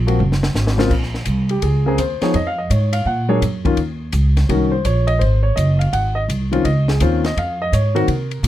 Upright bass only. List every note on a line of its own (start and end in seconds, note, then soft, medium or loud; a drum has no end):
0.00 0.18 A#1 loud
0.19 0.54 F#1 medium
0.54 0.89 G#1 medium
0.91 1.26 A#1 medium
1.27 1.61 C2 medium
1.62 1.97 C#2 medium
1.98 2.20 D#2 medium
2.21 muted upright bass stroke soft
2.34 2.69 F2 medium
2.70 3.05 G#2 medium
3.05 3.40 A#2 medium
3.42 3.76 F#2 medium
3.77 4.12 D#2 medium
4.13 4.48 C#2 medium
4.49 4.84 C2 medium
4.85 5.20 A#1 medium
5.21 5.56 G#1 medium
5.57 5.91 F#1 medium
5.93 6.27 G#1 medium
6.28 6.63 C2 medium
6.65 6.99 C#2 medium
7.01 7.35 D#2 loud
7.37 7.71 F2 medium
7.72 8.07 G#2 medium
8.08 8.42 C3 medium
8.43 8.48 A#2 loud